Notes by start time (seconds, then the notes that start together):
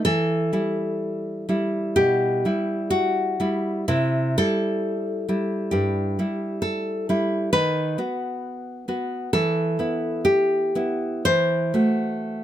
0.05 E3 A4
0.53 G3 E4
1.49 G3 E4
1.96 B2 G4
2.45 G3 E4
2.90 F#4
3.40 G3 E4
3.88 C3 E4
4.38 G3 E4 A4
5.29 G3 E4
5.71 G2 G4
6.19 G3 E4
6.62 A4
7.09 G3 E4
7.53 D#3 B4
7.98 B3 F#4
8.88 B3 F#4
9.33 E3 A4
9.79 B3 E4
10.25 G4
10.75 B3 E4
11.25 E3 C5
11.74 A3 F#4